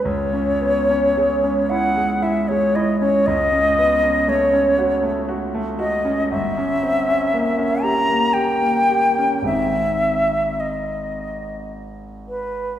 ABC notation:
X:1
M:3/4
L:1/16
Q:1/4=57
K:G#phr
V:1 name="Flute"
c6 f2 e c d c | d4 c4 z2 d2 | e6 _b2 =g4 | e4 d4 z2 B2 |]
V:2 name="Grand piano"
C,, C B, C G, C E G, E G, E C | C,, C B, C A, C F A, F A, F C | =G,,, _D ^B, D _B, D =G B, G B, G D | [G,,,G,^B,D]12 |]